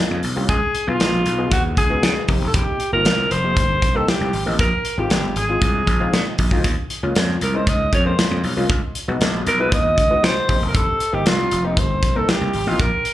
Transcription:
Already playing: analog polysynth A#3 C#4 F4 G#4, alto saxophone D#4
0.11 slap bass F2
0.23 slap bass B1, open hi-hat
0.36 slap bass C2, analog polysynth A#3 C#4 F4 G4
0.49 slap bass C#2, alto saxophone G#4, kick, closed hi-hat
0.75 closed hi-hat
0.87 slap bass B1, analog polysynth F#3 B3 D#4 G#4, alto saxophone F4
1.00 slap bass A#1, snare, closed hi-hat
1.26 slap bass B1, closed hi-hat
1.38 analog polysynth B3 D#4 F#4 G#4
1.52 slap bass D#2, alto saxophone F#4, kick, closed hi-hat
1.77 slap bass C#2, alto saxophone G#4, kick, closed hi-hat
1.90 analog polysynth B3 D#4 F#4 G#4
2.03 slap bass C#3, snare, closed hi-hat
2.28 slap bass F1, analog polysynth A#3 C4 D#4 G4, kick, open hi-hat
2.41 slap bass E1
2.47 alto saxophone A4
2.54 slap bass F1, alto saxophone G4, kick, closed hi-hat
2.80 closed hi-hat
2.92 slap bass G1, analog polysynth A#3 C4 D#4 F4, alto saxophone A#4
3.05 slap bass C2, snare, closed hi-hat
3.31 slap bass F1, alto saxophone C5, closed hi-hat
3.44 analog polysynth A#3 C4 D#4 G4
3.57 slap bass G1, kick, closed hi-hat
3.82 slap bass C2, kick, closed hi-hat
3.95 analog polysynth A#3 C4 D#4 G4, alto saxophone A4
4.08 alto saxophone G4, snare, closed hi-hat
4.21 slap bass C2
4.33 slap bass G#1, open hi-hat
4.46 slap bass A1, analog polysynth A#3 C4 D#4 G4
4.59 slap bass A#1, alto saxophone A#4, kick, closed hi-hat
4.85 closed hi-hat
4.98 slap bass G#1, analog polysynth G#3 C4 D#4 F4, alto saxophone G4
5.10 slap bass G1, snare, closed hi-hat
5.36 slap bass G#1, alto saxophone G#4, closed hi-hat
5.49 analog polysynth G#3 C4 D#4 F4
5.62 slap bass C2, kick, closed hi-hat
5.87 slap bass A#1, kick, closed hi-hat
6.00 analog polysynth G#3 C4 D#4 F4
6.13 slap bass A#2, snare, closed hi-hat
6.38 slap bass A#1, kick, open hi-hat
6.51 slap bass D2, analog polysynth G#3 C4 D#4 F4, kick
6.64 slap bass D#2, kick, closed hi-hat
6.90 closed hi-hat
7.03 slap bass C#2, analog polysynth G#3 A#3 C#4 F4
7.15 slap bass F2, snare, closed hi-hat
7.41 slap bass C2, alto saxophone A#4, closed hi-hat
7.54 analog polysynth G#3 A#3 C#4 D#4, alto saxophone C5
7.67 slap bass C#2, alto saxophone D#5, kick, closed hi-hat
7.93 slap bass F2, alto saxophone C#5, kick, closed hi-hat
8.05 analog polysynth G#3 A#3 C#4 F4, alto saxophone C5
8.19 snare, closed hi-hat
8.31 slap bass F2
8.44 slap bass B1, open hi-hat
8.57 slap bass C2, analog polysynth G#3 A#3 C#4 F4
8.69 slap bass C#2, kick, closed hi-hat
8.95 closed hi-hat
9.08 slap bass B1, analog polysynth G#3 B3 D#4 F#4
9.21 slap bass A#1, snare, closed hi-hat
9.46 slap bass B1, alto saxophone A#4, closed hi-hat
9.59 analog polysynth G#3 B3 D#4 F4, alto saxophone B4
9.72 slap bass D#2, alto saxophone D#5, kick, closed hi-hat
9.98 slap bass C#2, kick, closed hi-hat
10.10 analog polysynth G#3 B3 D#4 F#4
10.23 slap bass C#3, alto saxophone C5, snare, closed hi-hat
10.48 slap bass F1, analog polysynth A#3 C4 D#4 G4, kick, open hi-hat
10.62 slap bass E1
10.68 alto saxophone A#4
10.75 slap bass F1, alto saxophone A4, kick, closed hi-hat
11.00 closed hi-hat
11.13 slap bass G1, analog polysynth A#3 C4 D#4 G4, alto saxophone G4
11.26 slap bass C2, alto saxophone F4, snare, closed hi-hat
11.51 slap bass F1, closed hi-hat
11.64 analog polysynth A#3 C4 D#4 G4, alto saxophone D#4
11.77 slap bass G1, alto saxophone C5, kick, closed hi-hat
12.03 slap bass C2, kick, closed hi-hat
12.15 analog polysynth A#3 C4 D#4 A#4, alto saxophone A4
12.29 alto saxophone G4, snare, closed hi-hat
12.41 slap bass C2
12.53 slap bass G#1, open hi-hat
12.66 slap bass A1, analog polysynth A#3 C4 D#4 G4, alto saxophone F4
12.79 slap bass A#1, alto saxophone A#4, kick, closed hi-hat
13.05 closed hi-hat

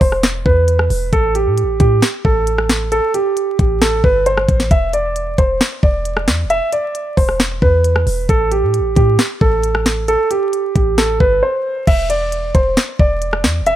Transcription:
0.01 808-style bass E1, grand piano C5, kick, open hi-hat
0.12 cross-stick
0.23 snare, closed hi-hat
0.46 808-style bass E2, grand piano B4, kick
0.68 closed hi-hat
0.79 cross-stick
0.90 808-style bass E1, open hi-hat
1.13 808-style bass A1, grand piano A4, kick, closed hi-hat
1.35 grand piano G4, closed hi-hat
1.46 808-style bass A2
1.58 closed hi-hat
1.63 808-style bass A1
1.80 808-style bass A2, grand piano G4, kick, closed hi-hat
2.02 snare, closed hi-hat
2.25 808-style bass A1, grand piano A4, kick
2.47 closed hi-hat
2.58 cross-stick
2.70 snare, closed hi-hat
2.92 grand piano A4, closed hi-hat
3.14 grand piano G4, closed hi-hat
3.37 closed hi-hat
3.59 808-style bass A1, grand piano G4, kick, closed hi-hat
3.81 grand piano A4, snare, closed hi-hat
4.04 808-style bass G1, grand piano B4, kick
4.26 grand piano C5, closed hi-hat
4.37 cross-stick
4.49 808-style bass A1, kick, closed hi-hat
4.60 snare
4.71 808-style bass E1, grand piano E5, kick, closed hi-hat
4.93 grand piano D5, closed hi-hat
5.16 closed hi-hat
5.38 808-style bass E1, grand piano C5, kick, closed hi-hat
5.61 snare, closed hi-hat
5.83 808-style bass E1, grand piano D5, kick
6.05 closed hi-hat
6.17 cross-stick
6.28 808-style bass E2, snare, closed hi-hat
6.44 808-style bass E1
6.50 grand piano E5, closed hi-hat
6.73 grand piano D5, closed hi-hat
6.95 closed hi-hat
7.17 808-style bass E1, grand piano C5, kick, open hi-hat
7.29 cross-stick
7.40 snare, closed hi-hat
7.62 808-style bass E2, grand piano B4, kick
7.84 closed hi-hat
7.96 cross-stick
8.07 808-style bass E1, open hi-hat
8.29 808-style bass A1, grand piano A4, kick, closed hi-hat
8.52 grand piano G4, closed hi-hat
8.63 808-style bass A2
8.74 closed hi-hat
8.80 808-style bass A1
8.96 808-style bass A2, grand piano G4, kick, closed hi-hat
9.19 snare, closed hi-hat
9.41 808-style bass A1, grand piano A4, kick
9.63 closed hi-hat
9.75 cross-stick
9.86 snare, closed hi-hat
10.08 grand piano A4, closed hi-hat
10.31 grand piano G4, closed hi-hat
10.53 closed hi-hat
10.75 808-style bass A1, grand piano G4, kick, closed hi-hat
10.98 grand piano A4, snare, closed hi-hat
11.20 808-style bass G1, grand piano B4, kick
11.43 grand piano C5
11.87 808-style bass E1, grand piano E5, kick, closed hi-hat, crash
12.10 grand piano D5, closed hi-hat
12.32 closed hi-hat
12.55 808-style bass E1, grand piano C5, kick, closed hi-hat
12.77 snare, closed hi-hat
12.99 808-style bass E1, grand piano D5, kick
13.22 closed hi-hat
13.33 cross-stick
13.44 808-style bass E2, snare, closed hi-hat
13.61 808-style bass E1
13.66 grand piano E5, closed hi-hat

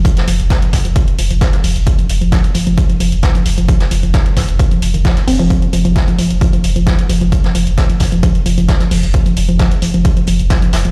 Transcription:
0.05 kick, closed hi-hat
0.17 synth arpeggio sound F3, snare, closed hi-hat
0.28 sub bass F1, synth arpeggio sound F3, closed hi-hat, open hi-hat
0.40 sub bass F1, closed hi-hat
0.50 synth arpeggio sound F3, kick, snare, closed hi-hat
0.62 sub bass F1, synth arpeggio sound F3, closed hi-hat
0.73 kick, snare, closed hi-hat, open hi-hat
0.85 sub bass F1, synth arpeggio sound F3, closed hi-hat
0.96 synth arpeggio sound F3, kick, closed hi-hat
1.08 closed hi-hat
1.18 sub bass F1, synth arpeggio sound F3, closed hi-hat, open hi-hat
1.30 sub bass F1, synth arpeggio sound F3, closed hi-hat
1.41 kick, snare, closed hi-hat
1.52 sub bass F1, synth arpeggio sound F3, snare, closed hi-hat
1.63 sub bass F1, synth arpeggio sound F3, open hi-hat
1.76 sub bass F1, closed hi-hat
1.87 synth arpeggio sound F3, kick, closed hi-hat
1.99 synth arpeggio sound F3, closed hi-hat
2.09 sub bass F1, closed hi-hat, open hi-hat
2.21 sub bass F1, synth arpeggio sound F3, closed hi-hat
2.32 synth arpeggio sound F3, kick, snare, closed hi-hat
2.44 sub bass F1, closed hi-hat
2.54 synth arpeggio sound F3, closed hi-hat, open hi-hat
2.67 sub bass F1, synth arpeggio sound F3, closed hi-hat
2.78 kick, closed hi-hat
2.90 synth arpeggio sound F3, closed hi-hat
3.00 sub bass F1, synth arpeggio sound F3, closed hi-hat, open hi-hat
3.12 sub bass F1, closed hi-hat
3.22 synth arpeggio sound F3, kick, snare, closed hi-hat
3.35 sub bass F1, synth arpeggio sound F3, closed hi-hat
3.46 sub bass F1, closed hi-hat, open hi-hat
3.58 sub bass F1, synth arpeggio sound F3, closed hi-hat
3.68 synth arpeggio sound F3, kick, closed hi-hat
3.80 snare, closed hi-hat
3.91 sub bass F1, synth arpeggio sound F3, closed hi-hat, open hi-hat
4.03 sub bass F1, synth arpeggio sound F3, closed hi-hat
4.14 kick, snare, closed hi-hat
4.26 sub bass F1, synth arpeggio sound F3, closed hi-hat
4.36 synth arpeggio sound F3, kick, snare, closed hi-hat, open hi-hat
4.49 sub bass F1, closed hi-hat
4.59 synth arpeggio sound F3, kick, closed hi-hat
4.71 synth arpeggio sound F3, closed hi-hat
4.82 sub bass F1, closed hi-hat, open hi-hat
4.94 sub bass F1, synth arpeggio sound D#3, closed hi-hat
5.04 synth arpeggio sound F3, kick, snare, closed hi-hat
5.17 sub bass F1, snare, closed hi-hat
5.27 sub bass F1, synth arpeggio sound C4, open hi-hat
5.39 sub bass F1, synth arpeggio sound F3, closed hi-hat
5.50 synth arpeggio sound F3, kick, closed hi-hat
5.62 closed hi-hat
5.72 sub bass F1, synth arpeggio sound F3, closed hi-hat, open hi-hat
5.85 sub bass F1, synth arpeggio sound F3, closed hi-hat
5.96 kick, snare, closed hi-hat
6.08 sub bass F1, synth arpeggio sound F3, closed hi-hat
6.19 synth arpeggio sound F3, closed hi-hat, open hi-hat
6.30 sub bass F1, closed hi-hat
6.41 synth arpeggio sound F3, kick, closed hi-hat
6.53 synth arpeggio sound F3, closed hi-hat
6.64 sub bass F1, closed hi-hat, open hi-hat
6.76 sub bass F1, synth arpeggio sound F3, closed hi-hat
6.87 synth arpeggio sound F3, kick, snare, closed hi-hat
6.99 sub bass F1, closed hi-hat
7.09 sub bass F1, synth arpeggio sound F3, closed hi-hat, open hi-hat
7.21 sub bass F1, synth arpeggio sound F3, closed hi-hat
7.32 kick, closed hi-hat
7.44 synth arpeggio sound F3, snare, closed hi-hat
7.55 sub bass F1, synth arpeggio sound F3, closed hi-hat, open hi-hat
7.67 sub bass F1, closed hi-hat
7.78 synth arpeggio sound F3, kick, snare, closed hi-hat
7.90 sub bass F1, synth arpeggio sound F3, closed hi-hat
7.99 kick, snare, closed hi-hat, open hi-hat
8.12 sub bass F1, synth arpeggio sound F3, closed hi-hat
8.23 synth arpeggio sound F3, kick, closed hi-hat
8.35 closed hi-hat
8.46 sub bass F1, synth arpeggio sound F3, closed hi-hat, open hi-hat
8.58 sub bass F1, synth arpeggio sound F3, closed hi-hat
8.68 kick, snare, closed hi-hat
8.80 sub bass F1, synth arpeggio sound F3, snare, closed hi-hat
8.91 sub bass F1, synth arpeggio sound F3, open hi-hat
9.03 sub bass F1, closed hi-hat
9.14 synth arpeggio sound F3, kick, closed hi-hat
9.26 synth arpeggio sound F3, closed hi-hat
9.37 sub bass F1, closed hi-hat, open hi-hat
9.49 sub bass F1, synth arpeggio sound F3, closed hi-hat
9.59 synth arpeggio sound F3, kick, snare, closed hi-hat
9.71 sub bass F1, closed hi-hat
9.82 synth arpeggio sound F3, closed hi-hat, open hi-hat
9.94 sub bass F1, synth arpeggio sound F3, closed hi-hat
10.05 kick, closed hi-hat
10.17 synth arpeggio sound F3, closed hi-hat
10.27 sub bass F1, synth arpeggio sound F3, closed hi-hat, open hi-hat
10.39 sub bass F1, closed hi-hat
10.50 synth arpeggio sound F3, kick, snare, closed hi-hat
10.62 sub bass F1, synth arpeggio sound F3, closed hi-hat
10.73 sub bass F1, snare, closed hi-hat, open hi-hat
10.85 sub bass F1, synth arpeggio sound F3, closed hi-hat

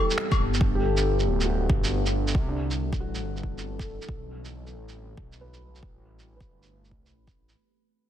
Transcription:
Already playing: ambient pad G3 B3 C4 E4 A4, felt piano G4
0.00 felt piano A4
0.10 shaker
0.18 finger snap
0.32 kick, claves, shaker
0.40 detuned saw bass G1
0.54 shaker
0.61 detuned saw bass G1, ambient pad D4 F#5, kick
0.75 felt piano G4
0.97 shaker
1.19 shaker
1.27 detuned saw bass D1
1.41 shaker
1.45 felt piano F#4
1.69 detuned saw bass G1, kick
1.84 shaker
2.06 shaker
2.28 shaker
2.35 detuned saw bass C2, ambient pad C4 D4 E4 A4, kick
2.48 felt piano D4
2.71 shaker
2.93 kick, shaker
3.00 detuned saw bass A1, felt piano F#4
3.15 shaker
3.22 detuned saw bass G1
3.36 shaker
3.43 detuned saw bass G1, kick
3.58 shaker
3.79 felt piano A4, kick, shaker
4.02 shaker
4.08 detuned saw bass B1, ambient pad D4 F#4, kick
4.45 shaker
4.67 shaker
4.74 detuned saw bass A1
4.89 shaker
5.17 detuned saw bass B1, kick
5.32 shaker
5.41 felt piano B4
5.54 shaker
5.76 shaker
5.82 detuned saw bass A1, ambient pad A3 C4 E4 G4 B4, kick
6.19 shaker
6.36 felt piano B4
6.41 kick, shaker
6.48 detuned saw bass G1
6.63 shaker
6.85 shaker
6.91 detuned saw bass C2, kick
7.06 shaker
7.13 detuned saw bass A1
7.27 kick, shaker
7.49 shaker

